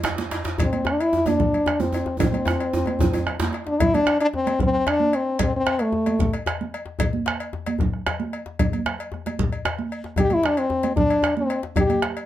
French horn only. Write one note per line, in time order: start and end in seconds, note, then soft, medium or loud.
0.62 0.90 C4 medium
0.89 1.03 D4 medium
1.02 1.30 E4 loud
1.29 1.82 D4 medium
1.81 2.20 C4 medium
2.20 3.50 C4 medium
3.67 3.82 D4 medium
3.80 3.96 E4 loud
3.94 4.21 D4 loud
4.21 4.27 D4 loud
4.35 4.59 C4 loud
4.63 4.90 C4 loud
4.89 5.17 D4 loud
5.15 5.41 C4 medium
5.42 5.54 C4 medium
5.57 5.83 C4 loud
5.82 6.34 A3 medium
10.19 10.35 G4 loud
10.33 10.49 E4 loud
10.47 10.60 D4 medium
10.58 10.96 C4 loud
10.96 11.34 D4 medium
11.37 11.62 C4 medium
11.77 12.04 G4 medium